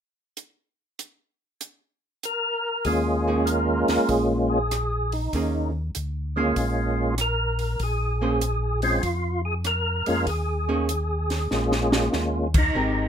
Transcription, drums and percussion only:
0.37 closed hi-hat soft
0.99 closed hi-hat soft
1.61 closed hi-hat soft
2.23 closed hi-hat soft
2.85 kick soft
2.85 open hi-hat soft
3.47 closed hi-hat soft
3.88 snare soft
3.88 open hi-hat soft
4.09 kick soft
4.09 open hi-hat soft
4.71 cross-stick soft
4.71 closed hi-hat soft
5.12 open hi-hat soft
5.33 kick soft
5.33 open hi-hat soft
5.95 closed hi-hat soft
6.56 kick soft
6.56 open hi-hat soft
7.18 cross-stick soft
7.18 closed hi-hat soft
7.59 open hi-hat soft
7.80 kick soft
7.80 open hi-hat soft
8.41 closed hi-hat soft
8.82 open hi-hat soft
9.03 kick soft
9.03 open hi-hat soft
9.64 cross-stick soft
9.64 closed hi-hat soft
10.06 open hi-hat soft
10.27 kick soft
10.27 open hi-hat soft
10.89 closed hi-hat soft
11.30 snare soft
11.30 open hi-hat soft
11.51 snare soft
11.72 snare soft
11.92 snare medium
12.13 snare soft
12.54 kick medium
12.54 crash medium
12.75 kick soft

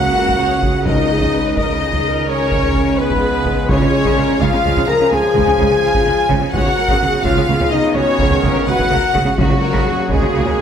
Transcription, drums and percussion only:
0.28 taiko medium
0.63 taiko medium
0.86 taiko loud
1.21 taiko medium
1.57 taiko medium
1.93 taiko low medium
2.52 taiko medium
2.63 taiko low medium
2.75 taiko medium
3.10 taiko medium
3.45 taiko medium
3.69 taiko loud
4.05 taiko medium
4.41 taiko medium
4.77 taiko low medium
5.36 taiko medium
5.47 taiko low medium
5.59 taiko medium
5.95 taiko medium
6.30 taiko medium
6.54 taiko loud
6.88 taiko medium
7.24 taiko loud
7.60 taiko low medium
8.19 taiko medium
8.31 taiko low medium
8.43 taiko medium
8.79 taiko loud
9.15 taiko medium
9.38 taiko loud
9.74 taiko loud
10.09 taiko loud
10.45 taiko low medium

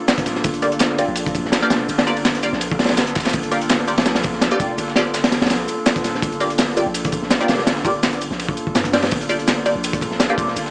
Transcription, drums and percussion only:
0.08 snare loud
0.08 open hi-hat medium
0.08 shaker medium
0.18 kick medium
0.18 closed hi-hat soft
0.26 snare soft
0.26 open hi-hat medium
0.26 shaker medium
0.35 snare soft
0.44 kick loud
0.44 open hi-hat medium
0.44 shaker medium
0.54 closed hi-hat soft
0.62 open hi-hat medium
0.62 shaker medium
0.72 closed hi-hat soft
0.79 snare loud
0.79 open hi-hat medium
0.79 shaker medium
0.98 open hi-hat medium
0.98 shaker medium
1.16 open hi-hat medium
1.16 shaker medium
1.26 kick loud
1.26 closed hi-hat soft
1.35 kick loud
1.35 open hi-hat medium
1.35 shaker medium
1.45 snare soft
1.52 snare loud
1.52 open hi-hat medium
1.52 shaker medium
1.63 closed hi-hat soft
1.70 snare loud
1.70 open hi-hat medium
1.70 shaker medium
1.89 open hi-hat medium
1.89 shaker medium
1.98 snare loud
1.98 snare soft
1.98 open hi-hat medium
2.07 shaker medium
2.17 open hi-hat medium
2.25 snare loud
2.25 open hi-hat medium
2.25 shaker medium
2.35 closed hi-hat soft
2.43 open hi-hat medium
2.43 shaker medium
2.53 snare soft
2.61 open hi-hat medium
2.61 shaker medium
2.71 kick medium
2.79 snare medium
2.79 open hi-hat medium
2.84 snare medium
2.84 open hi-hat medium
2.89 snare loud
2.89 open hi-hat medium
2.97 snare loud
2.97 open hi-hat medium
2.97 shaker medium
3.07 closed hi-hat soft
3.15 kick medium
3.15 snare medium
3.15 open hi-hat medium
3.15 shaker medium
3.20 snare medium
3.20 shaker medium
3.25 snare medium
3.25 snare loud
3.25 open hi-hat medium
3.25 shaker medium
3.29 snare medium
3.29 open hi-hat medium
3.29 shaker medium
3.33 kick loud
3.33 shaker medium
3.43 closed hi-hat soft
3.52 open hi-hat medium
3.52 shaker medium
3.62 closed hi-hat soft
3.70 snare loud
3.70 open hi-hat medium
3.70 shaker medium
3.88 open hi-hat medium
3.88 shaker medium
3.98 snare loud
3.98 open hi-hat medium
4.06 snare loud
4.06 open hi-hat medium
4.06 shaker medium
4.15 snare loud
4.15 closed hi-hat soft
4.15 open hi-hat medium
4.23 kick medium
4.23 open hi-hat medium
4.23 shaker medium
4.33 snare soft
4.41 snare loud
4.41 open hi-hat medium
4.41 shaker medium
4.51 closed hi-hat soft
4.60 kick medium
4.60 open hi-hat medium
4.60 shaker medium
4.78 open hi-hat medium
4.78 shaker medium
4.88 snare soft
4.96 snare loud
4.96 open hi-hat medium
4.96 shaker medium
5.14 snare loud
5.14 open hi-hat medium
5.14 shaker medium
5.24 snare loud
5.24 closed hi-hat soft
5.24 open hi-hat medium
5.32 snare loud
5.32 open hi-hat medium
5.32 shaker medium
5.41 snare medium
5.41 open hi-hat medium
5.46 snare medium
5.46 open hi-hat medium
5.50 snare loud
5.50 open hi-hat medium
5.50 shaker medium
5.68 open hi-hat medium
5.68 shaker medium
5.86 snare loud
5.86 open hi-hat medium
5.86 shaker medium
5.96 kick medium
5.96 closed hi-hat soft
6.04 snare soft
6.04 open hi-hat medium
6.04 shaker medium
6.15 snare soft
6.22 kick loud
6.22 open hi-hat medium
6.22 shaker medium
6.32 closed hi-hat soft
6.40 open hi-hat medium
6.40 shaker medium
6.50 closed hi-hat soft
6.58 snare loud
6.58 open hi-hat medium
6.58 shaker medium
6.77 open hi-hat medium
6.77 shaker medium
6.94 open hi-hat medium
6.94 shaker medium
7.05 kick loud
7.05 closed hi-hat soft
7.12 kick loud
7.12 open hi-hat medium
7.12 shaker medium
7.23 snare soft
7.30 snare loud
7.30 open hi-hat medium
7.30 shaker medium
7.41 closed hi-hat soft
7.48 snare loud
7.48 open hi-hat medium
7.48 shaker medium
7.59 snare soft
7.67 snare loud
7.67 open hi-hat medium
7.67 shaker medium
7.77 snare soft
7.85 kick loud
7.85 open hi-hat medium
7.85 shaker medium
8.03 snare loud
8.03 open hi-hat medium
8.03 shaker medium
8.13 closed hi-hat soft
8.21 open hi-hat medium
8.21 shaker medium
8.32 snare soft
8.40 open hi-hat medium
8.49 kick medium
8.57 open hi-hat medium
8.57 shaker medium
8.67 kick medium
8.75 snare loud
8.75 open hi-hat medium
8.75 shaker medium
8.84 kick medium
8.84 closed hi-hat soft
8.93 snare loud
8.93 open hi-hat medium
8.93 shaker medium
9.03 snare loud
9.03 open hi-hat medium
9.11 kick loud
9.11 open hi-hat medium
9.11 shaker medium
9.21 closed hi-hat soft
9.29 open hi-hat medium
9.29 shaker medium
9.39 closed hi-hat soft
9.48 snare loud
9.48 open hi-hat medium
9.48 shaker medium
9.66 open hi-hat medium
9.66 shaker medium
9.84 open hi-hat medium
9.84 shaker medium
9.93 kick loud
9.93 closed hi-hat soft
10.01 kick loud
10.01 open hi-hat medium
10.01 shaker medium
10.11 snare soft
10.20 snare loud
10.20 open hi-hat medium
10.20 shaker medium
10.29 closed hi-hat soft
10.38 kick loud
10.38 open hi-hat medium
10.38 shaker medium
10.47 snare soft
10.56 open hi-hat medium
10.56 shaker medium
10.66 snare soft

